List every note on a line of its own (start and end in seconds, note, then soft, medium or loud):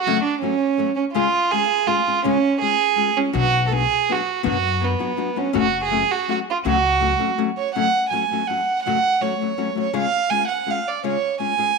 0.02 0.21 F#4 loud
0.06 0.17 F#2 medium
0.06 0.18 C#3 medium
0.06 0.18 F#3 medium
0.06 0.18 A3 medium
0.06 0.18 C#4 medium
0.06 0.18 F#4 medium
0.24 0.41 D4 medium
0.41 0.53 F#3 soft
0.41 0.54 A3 soft
0.41 0.93 C#4 medium
0.41 0.54 C#4 medium
0.41 0.54 F#4 medium
0.78 0.90 F#3 soft
0.78 0.90 A3 medium
0.78 0.90 C#4 soft
0.78 0.90 F#4 medium
0.96 1.05 C#4 medium
1.13 1.26 C#3 medium
1.13 1.26 G#3 medium
1.13 1.27 C#4 medium
1.13 1.53 F4 loud
1.13 1.27 F4 loud
1.13 1.27 G#4 medium
1.52 1.64 G#3 medium
1.52 1.64 C#4 medium
1.52 1.64 F4 medium
1.52 1.89 G#4 loud
1.52 1.65 G#4 medium
1.87 1.99 G#3 soft
1.87 1.99 C#4 medium
1.87 2.25 F4 medium
1.87 2.00 F4 medium
1.87 2.00 G#4 medium
2.07 2.18 G#3 soft
2.07 2.18 C#4 soft
2.07 2.18 F4 soft
2.07 2.18 G#4 soft
2.24 2.36 C#3 medium
2.24 2.36 G#3 medium
2.24 2.36 C#4 medium
2.24 2.60 C#4 loud
2.24 2.37 F4 medium
2.24 2.37 G#4 medium
2.62 2.73 G#3 soft
2.62 2.73 C#4 soft
2.62 2.74 F4 medium
2.62 3.19 G#4 loud
2.62 2.74 G#4 medium
2.96 3.09 G#3 soft
2.96 3.09 C#4 soft
2.96 3.09 F4 medium
2.96 3.10 G#4 medium
3.16 3.28 G#3 soft
3.16 3.28 C#4 soft
3.16 3.35 C#4 medium
3.16 3.28 F4 medium
3.16 3.28 G#4 soft
3.33 3.83 B1 loud
3.33 3.46 B2 medium
3.33 3.46 F#3 medium
3.33 3.46 B3 medium
3.33 3.46 D4 medium
3.33 3.46 F#4 medium
3.33 3.64 F#4 loud
3.67 3.83 F#3 medium
3.67 3.83 B3 medium
3.67 3.83 D4 medium
3.67 3.74 A4 medium
3.72 3.84 F#4 medium
3.72 4.14 G#4 loud
4.09 4.20 F#3 medium
4.09 4.21 B3 medium
4.09 4.21 D4 medium
4.09 4.21 F#4 medium
4.09 4.47 F#4 medium
4.43 4.93 F#2 medium
4.43 4.56 B2 medium
4.43 4.56 F#3 medium
4.43 4.56 B3 loud
4.43 4.56 D4 medium
4.43 4.56 F#4 medium
4.47 4.85 F#4 medium
4.80 4.93 F#3 medium
4.80 4.93 B3 medium
4.80 5.40 B3 medium
4.80 4.94 D4 medium
4.80 4.94 F#4 medium
4.99 5.11 F#3 soft
4.99 5.11 B3 medium
4.99 5.11 D4 soft
4.99 5.11 F#4 medium
5.17 5.29 F#3 soft
5.17 5.29 B3 soft
5.17 5.30 D4 medium
5.17 5.30 F#4 medium
5.36 5.47 F#3 soft
5.36 5.47 B3 soft
5.36 5.56 C#4 medium
5.36 5.48 D4 soft
5.36 5.48 F#4 medium
5.53 6.02 F#1 medium
5.53 5.65 F#2 medium
5.53 5.65 C#3 medium
5.53 5.66 F#3 medium
5.53 5.66 A3 medium
5.53 5.66 C#4 medium
5.53 5.66 F#4 medium
5.57 5.82 F#4 loud
5.85 6.13 G#4 medium
5.91 6.02 F#3 medium
5.91 6.02 A3 medium
5.91 6.03 C#4 medium
5.91 6.04 F#4 medium
6.11 6.29 F#4 medium
6.28 6.39 F#3 medium
6.28 6.40 A3 medium
6.28 6.40 C#4 soft
6.28 6.40 F#4 medium
6.28 6.39 F#4 medium
6.50 6.58 F4 medium
6.65 7.13 C#2 medium
6.65 6.76 F#2 medium
6.65 6.76 C#3 medium
6.65 6.76 F#3 medium
6.65 6.76 A3 medium
6.65 6.77 C#4 medium
6.65 7.34 F#4 loud
6.65 6.76 F#4 medium
7.00 7.12 F#3 medium
7.00 7.12 A3 medium
7.00 7.12 C#4 soft
7.00 7.13 F#4 medium
7.19 7.30 F#3 medium
7.19 7.30 A3 medium
7.19 7.31 C#4 soft
7.19 7.31 F#4 medium
7.38 7.49 F#3 medium
7.38 7.49 A3 medium
7.38 7.50 C#4 medium
7.38 7.50 F#4 medium
7.58 7.74 C#5 medium
7.75 7.86 F#2 medium
7.75 7.87 C#3 medium
7.75 7.87 F#3 medium
7.75 7.87 A3 medium
7.75 7.87 C#4 medium
7.75 7.87 F#4 medium
7.75 8.09 F#5 loud
8.10 8.22 F#3 soft
8.10 8.23 A3 soft
8.10 8.24 C#4 soft
8.10 8.24 F#4 soft
8.10 8.49 G#5 medium
8.31 8.42 F#3 soft
8.31 8.42 A3 soft
8.31 8.42 C#4 soft
8.31 8.42 F#4 soft
8.47 8.60 F#3 soft
8.47 8.60 A3 soft
8.47 8.60 C#4 soft
8.47 8.61 F#4 medium
8.47 8.83 F#5 medium
8.83 8.97 F#2 medium
8.83 8.97 C#3 medium
8.83 8.97 F#3 medium
8.83 8.97 C#4 medium
8.83 8.97 F#4 medium
8.83 9.23 F#5 loud
8.87 8.97 A3 medium
9.21 9.32 F#3 medium
9.21 9.33 A3 medium
9.21 9.33 C#4 medium
9.21 9.33 F#4 medium
9.21 9.77 C#5 medium
9.41 9.51 F#3 soft
9.41 9.51 A3 soft
9.41 9.52 C#4 soft
9.41 9.52 F#4 soft
9.58 9.69 F#3 soft
9.58 9.69 A3 soft
9.58 9.69 C#4 medium
9.58 9.69 F#4 medium
9.75 9.87 F#3 soft
9.75 9.87 A3 soft
9.75 9.88 C#4 soft
9.75 9.88 F#4 soft
9.81 9.95 C#5 medium
9.93 10.05 C#3 medium
9.93 10.05 G#3 medium
9.93 10.05 C#4 medium
9.93 10.05 F4 medium
9.93 10.05 G#4 medium
9.98 10.32 F5 loud
10.30 10.42 G#3 medium
10.30 10.42 C#4 medium
10.30 10.43 F4 soft
10.30 10.43 G#4 medium
10.30 10.48 G#5 loud
10.48 10.72 F#5 medium
10.66 10.78 G#3 soft
10.66 10.78 C#4 soft
10.66 10.79 F4 medium
10.66 10.79 G#4 soft
10.71 10.90 F5 medium
10.88 11.05 D5 medium
11.04 11.15 C#3 medium
11.04 11.15 G#3 medium
11.04 11.15 C#4 medium
11.04 11.16 F4 medium
11.04 11.16 G#4 medium
11.04 11.40 C#5 medium
11.39 11.52 G#3 soft
11.39 11.52 C#4 medium
11.39 11.52 F4 medium
11.39 11.52 G#4 soft
11.39 11.78 G#5 medium
11.57 11.69 G#3 soft
11.57 11.70 C#4 soft
11.57 11.70 F4 soft
11.57 11.70 G#4 soft